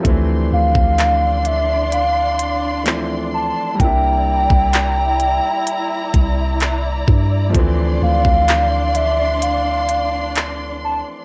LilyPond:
<<
  \new Staff \with { instrumentName = "Soft synth lead" } { \time 4/4 \key d \minor \tempo 4 = 64 r8 f''4 e''8 f''4 r8 a''8 | g''2. r4 | r8 f''4 e''8 f''4 r8 a''8 | }
  \new Staff \with { instrumentName = "String section" } { \time 4/4 \key d \minor << { <d' c'''>1 | <e' bes''>1 | <d' c'''>1 | } \\ { d''1 | d''2 d''2~ | d''1 | } >> }
  \new Staff \with { instrumentName = "Grand piano" } { \time 4/4 \key d \minor <cis' g'>16 r2. r8. | r1 | r1 | }
  \new Staff \with { instrumentName = "Grand piano" } { \time 4/4 \key d \minor <e f a c'>2. <e f a c' e'>4 | <g bes d' e'>1 | <e f a c'>1 | }
  \new Staff \with { instrumentName = "808-style bass" } { \clef bass \time 4/4 \key d \minor d,8 d,16 d,2. r16 | c,8. c,4 r8. c,4 g,8 | d,8 d,16 d,2. r16 | }
  \new DrumStaff \with { instrumentName = "Drums" } \drummode { \time 4/4 <hh bd>8. bd16 <hc hh>8 hh8 hh8 hh8 <hc hh>4 | <hh bd>8. bd16 <hc hh>8 hh8 hh8 <hh bd>8 <hc hh>8 bd8 | <hh bd>8. bd16 <hc hh>8 hh8 hh8 hh8 <hc hh>4 | }
>>